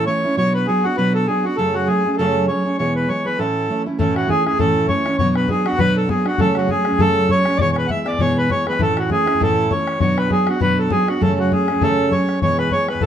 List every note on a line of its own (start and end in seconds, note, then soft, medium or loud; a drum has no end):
0.07 0.24 E3 medium
0.07 0.24 A3 medium
0.07 0.24 C#4 medium
0.07 0.23 E4 medium
0.07 0.36 C#5 medium
0.24 0.37 A3 soft
0.24 0.38 C#4 soft
0.24 0.37 E4 soft
0.37 0.67 B2 medium
0.37 0.67 F#3 medium
0.37 0.68 B3 medium
0.37 0.68 D4 medium
0.37 0.69 F#4 medium
0.37 0.53 C#5 loud
0.54 0.67 B4 medium
0.67 0.84 F#3 medium
0.67 0.85 B3 medium
0.67 0.85 D4 medium
0.67 0.83 F#4 medium
0.67 0.85 G#4 medium
0.84 0.97 B3 soft
0.84 0.98 D4 soft
0.84 0.96 F#4 medium
0.84 0.98 F#4 soft
0.97 1.28 B2 medium
0.97 1.27 F#3 medium
0.97 1.27 B3 medium
0.97 1.28 D4 medium
0.97 1.28 F#4 medium
0.97 1.13 B4 medium
1.14 1.27 A4 medium
1.27 1.45 F#3 soft
1.27 1.45 B3 medium
1.27 1.45 D4 medium
1.27 1.44 F#4 medium
1.27 1.45 G#4 medium
1.44 1.58 B3 soft
1.44 1.58 D4 soft
1.44 1.57 F#4 medium
1.44 1.58 F#4 medium
1.57 1.88 F#2 medium
1.57 1.88 C#3 medium
1.57 1.87 F#3 medium
1.57 1.88 A3 medium
1.57 1.88 C#4 medium
1.57 1.89 G#4 medium
1.57 1.75 A4 medium
1.74 1.88 F#4 medium
1.87 2.05 F#3 medium
1.87 2.05 A3 medium
1.87 2.05 C#4 medium
1.87 2.15 G#4 medium
1.87 2.04 G#4 medium
2.05 2.19 F#3 soft
2.05 2.19 A3 soft
2.05 2.19 C#4 soft
2.05 2.18 G#4 soft
2.18 2.49 F#2 medium
2.18 2.49 C#3 medium
2.18 2.48 F#3 medium
2.18 2.48 A3 medium
2.18 2.49 C#4 medium
2.18 2.49 G#4 medium
2.18 2.46 A4 loud
2.48 2.65 F#3 soft
2.48 2.66 A3 soft
2.48 2.65 C#4 medium
2.48 2.64 G#4 medium
2.48 2.77 C#5 medium
2.65 2.79 F#3 soft
2.65 2.79 A3 soft
2.65 2.79 C#4 soft
2.65 2.78 G#4 soft
2.78 3.09 E2 medium
2.78 3.09 B2 medium
2.78 3.08 E3 medium
2.78 3.08 G#3 medium
2.78 3.09 B3 medium
2.78 3.09 G#4 medium
2.78 2.94 C#5 medium
2.96 3.09 B4 medium
3.08 3.25 E3 medium
3.08 3.26 G#3 medium
3.08 3.25 B3 soft
3.08 3.24 G#4 medium
3.08 3.26 C#5 medium
3.26 3.38 E3 soft
3.26 3.39 G#3 soft
3.26 3.39 B3 soft
3.26 3.39 G#4 soft
3.26 3.39 B4 medium
3.39 3.69 A2 medium
3.39 3.68 E3 medium
3.39 3.69 A3 medium
3.39 3.69 C#4 medium
3.39 3.69 E4 medium
3.39 3.82 A4 medium
3.69 3.86 E3 soft
3.69 3.86 A3 medium
3.69 3.85 C#4 soft
3.69 3.85 E4 medium
3.86 3.98 A3 soft
3.86 3.99 C#4 soft
3.86 3.99 E4 medium
3.98 4.29 A2 medium
3.98 4.27 E3 medium
3.98 4.28 A3 medium
3.98 4.28 C#4 medium
3.98 4.29 E4 medium
3.98 4.14 A4 medium
3.98 bodhran medium
4.16 4.29 F#4 medium
4.16 bodhran medium
4.28 4.45 E3 medium
4.28 4.46 A3 medium
4.28 4.45 C#4 medium
4.28 4.44 E4 medium
4.28 4.45 G#4 medium
4.28 bodhran medium
4.45 4.58 A3 soft
4.45 4.58 C#4 soft
4.45 4.58 E4 soft
4.45 4.58 G#4 medium
4.45 bodhran medium
4.53 bodhran soft
4.58 4.88 A2 medium
4.58 4.87 E3 medium
4.58 4.88 A3 medium
4.58 4.88 C#4 medium
4.58 4.89 E4 medium
4.58 4.87 A4 loud
4.58 bodhran medium
4.68 bodhran soft
4.88 5.05 E3 soft
4.88 5.06 A3 medium
4.88 5.05 C#4 medium
4.88 5.04 E4 medium
4.88 5.17 C#5 medium
4.88 bodhran medium
5.05 5.20 A3 soft
5.05 5.19 C#4 soft
5.05 5.19 E4 soft
5.05 bodhran medium
5.18 5.49 B2 medium
5.18 5.48 F#3 medium
5.18 5.48 B3 medium
5.18 5.49 D4 medium
5.18 5.50 F#4 medium
5.18 5.34 C#5 loud
5.18 bodhran medium
5.35 5.49 B4 medium
5.35 bodhran medium
5.48 5.66 F#3 medium
5.48 5.66 B3 medium
5.48 5.65 D4 medium
5.48 5.64 F#4 medium
5.48 5.67 G#4 medium
5.48 bodhran medium
5.65 5.78 B3 soft
5.65 5.79 D4 soft
5.65 5.79 F#4 soft
5.65 5.79 F#4 medium
5.65 bodhran medium
5.72 bodhran soft
5.79 6.09 B2 medium
5.79 6.07 F#3 medium
5.79 6.08 B3 medium
5.79 6.09 D4 medium
5.79 6.09 F#4 medium
5.79 5.96 B4 loud
5.79 bodhran medium
5.88 bodhran soft
5.97 6.09 A4 medium
6.09 6.26 F#3 soft
6.09 6.26 B3 medium
6.09 6.25 D4 medium
6.09 6.24 F#4 medium
6.09 6.27 G#4 medium
6.09 bodhran medium
6.25 6.39 B3 soft
6.25 6.39 D4 soft
6.25 6.39 F#4 soft
6.25 6.40 F#4 medium
6.25 bodhran medium
6.38 6.69 F#2 medium
6.38 6.69 C#3 medium
6.38 6.67 F#3 medium
6.38 6.68 A3 medium
6.38 6.69 C#4 medium
6.38 6.70 G#4 medium
6.38 6.57 A4 medium
6.38 bodhran medium
6.55 6.70 F#4 medium
6.55 bodhran medium
6.68 6.86 F#3 medium
6.68 6.86 A3 medium
6.68 6.85 C#4 medium
6.68 7.00 G#4 medium
6.68 6.84 G#4 medium
6.68 bodhran medium
6.85 6.98 F#3 soft
6.85 6.99 A3 soft
6.85 6.99 C#4 medium
6.85 6.99 G#4 soft
6.85 bodhran medium
6.92 bodhran soft
6.99 7.29 F#2 medium
6.99 7.29 C#3 medium
6.99 7.28 F#3 medium
6.99 7.29 A3 medium
6.99 7.29 C#4 medium
6.99 7.30 G#4 medium
6.99 7.31 A4 loud
6.99 bodhran medium
7.07 bodhran soft
7.29 7.46 F#3 medium
7.29 7.46 A3 soft
7.29 7.46 C#4 medium
7.29 7.45 G#4 medium
7.29 7.58 C#5 loud
7.29 bodhran medium
7.45 7.60 F#3 soft
7.45 7.60 A3 soft
7.45 7.60 C#4 soft
7.45 7.59 G#4 soft
7.45 bodhran medium
7.57 7.89 E2 medium
7.57 7.90 B2 medium
7.57 7.88 E3 medium
7.57 7.89 G#3 medium
7.57 7.89 B3 medium
7.57 7.90 G#4 medium
7.57 7.71 C#5 loud
7.57 7.60 D5 medium
7.57 bodhran medium
7.72 7.76 C#5 medium
7.76 7.87 B4 medium
7.76 bodhran medium
7.87 8.06 E3 medium
7.87 8.06 G#3 medium
7.87 8.05 B3 medium
7.87 8.04 G#4 medium
7.87 8.07 E5 loud
7.87 7.90 F#5 medium
7.87 bodhran medium
8.05 8.19 E3 soft
8.05 8.19 G#3 soft
8.05 8.19 B3 soft
8.05 8.19 G#4 soft
8.05 8.20 D5 medium
8.05 bodhran medium
8.13 bodhran soft
8.19 8.50 E2 medium
8.19 8.50 B2 medium
8.19 8.48 E3 medium
8.19 8.49 G#3 medium
8.19 8.50 B3 medium
8.19 8.50 G#4 medium
8.19 8.37 C#5 loud
8.19 bodhran medium
8.38 8.51 B4 medium
8.49 8.66 E3 soft
8.49 8.67 G#3 soft
8.49 8.66 B3 medium
8.49 8.65 G#4 medium
8.49 8.66 C#5 loud
8.49 bodhran medium
8.66 8.78 E3 soft
8.66 8.79 G#3 soft
8.66 8.80 B3 medium
8.66 8.80 G#4 soft
8.66 8.81 B4 medium
8.66 bodhran medium
8.73 bodhran soft
8.79 9.09 A2 medium
8.79 9.09 E3 medium
8.79 9.09 A3 medium
8.79 9.10 C#4 medium
8.79 9.10 E4 medium
8.79 8.98 A4 loud
8.79 bodhran medium
8.97 9.10 F#4 medium
8.97 bodhran medium
9.10 9.27 E3 soft
9.10 9.27 A3 medium
9.10 9.26 C#4 medium
9.10 9.25 E4 medium
9.10 9.42 G#4 medium
9.10 bodhran medium
9.26 9.40 A3 soft
9.26 9.40 C#4 soft
9.26 9.40 E4 soft
9.26 bodhran medium
9.34 bodhran soft
9.40 9.70 A2 medium
9.40 9.68 E3 medium
9.40 9.69 A3 medium
9.40 9.70 C#4 medium
9.40 9.70 E4 medium
9.40 9.72 A4 loud
9.40 bodhran medium
9.50 bodhran soft
9.70 10.00 E3 soft
9.70 10.00 A3 soft
9.70 10.01 C#4 medium
9.70 10.01 E4 medium
9.70 9.99 C#5 medium
9.70 bodhran medium
9.87 bodhran medium
10.00 10.30 B2 medium
10.00 10.30 F#3 medium
10.00 10.30 B3 medium
10.00 10.31 D4 medium
10.00 10.32 F#4 medium
10.00 10.18 C#5 medium
10.00 bodhran medium
10.18 10.31 B4 medium
10.18 bodhran medium
10.30 10.47 F#3 medium
10.30 10.48 B3 medium
10.30 10.47 D4 medium
10.30 10.46 F#4 medium
10.30 10.48 G#4 medium
10.30 bodhran medium
10.47 10.60 B3 soft
10.47 10.60 D4 soft
10.47 10.60 F#4 soft
10.47 10.60 F#4 medium
10.47 bodhran medium
10.60 10.90 B2 medium
10.60 10.89 F#3 medium
10.60 10.89 B3 medium
10.60 10.90 D4 medium
10.60 10.91 F#4 medium
10.60 10.78 B4 loud
10.60 bodhran medium
10.69 bodhran soft
10.79 10.92 A4 medium
10.90 11.07 F#3 medium
10.90 11.07 B3 medium
10.90 11.07 D4 medium
10.90 11.06 F#4 medium
10.90 11.08 G#4 medium
10.90 bodhran medium
11.07 11.21 B3 soft
11.07 11.21 D4 soft
11.07 11.21 F#4 soft
11.07 11.21 F#4 medium
11.07 bodhran medium
11.20 11.51 F#2 medium
11.20 11.51 C#3 medium
11.20 11.50 F#3 medium
11.20 11.51 A3 medium
11.20 11.51 C#4 medium
11.20 11.51 G#4 medium
11.20 11.39 A4 loud
11.20 bodhran medium
11.40 11.52 F#4 medium
11.51 11.68 F#3 soft
11.51 11.68 A3 medium
11.51 11.68 C#4 medium
11.51 11.82 G#4 medium
11.51 11.67 G#4 medium
11.51 bodhran medium
11.68 11.81 F#3 soft
11.68 11.81 A3 soft
11.68 11.81 C#4 soft
11.68 11.81 G#4 medium
11.68 bodhran medium
11.75 bodhran soft
11.81 12.11 F#2 medium
11.81 12.11 C#3 medium
11.81 12.10 F#3 medium
11.81 12.10 A3 medium
11.81 12.11 C#4 medium
11.81 12.12 G#4 medium
11.81 12.13 A4 loud
11.81 bodhran medium
12.11 12.41 F#3 soft
12.11 12.41 A3 soft
12.11 12.42 C#4 medium
12.11 12.42 G#4 medium
12.11 12.39 C#5 medium
12.11 bodhran medium
12.29 bodhran medium
12.42 12.72 E2 medium
12.42 12.72 B2 medium
12.42 12.71 E3 medium
12.42 12.71 G#3 medium
12.42 12.72 B3 medium
12.42 12.72 G#4 medium
12.42 12.57 C#5 medium
12.42 bodhran medium
12.59 12.72 B4 medium
12.59 bodhran medium
12.71 12.88 E3 soft
12.71 12.89 G#3 medium
12.71 12.88 B3 medium
12.71 12.87 G#4 medium
12.71 12.87 C#5 medium
12.71 bodhran medium
12.88 13.01 E3 soft
12.88 13.02 G#3 soft
12.88 13.02 B3 soft
12.88 13.02 G#4 soft
12.88 13.02 B4 medium
12.88 bodhran medium
12.95 bodhran soft
13.01 13.06 A2 medium
13.01 13.06 E3 medium
13.01 13.06 A3 medium
13.01 13.06 C#4 medium
13.01 13.06 A4 medium
13.01 bodhran medium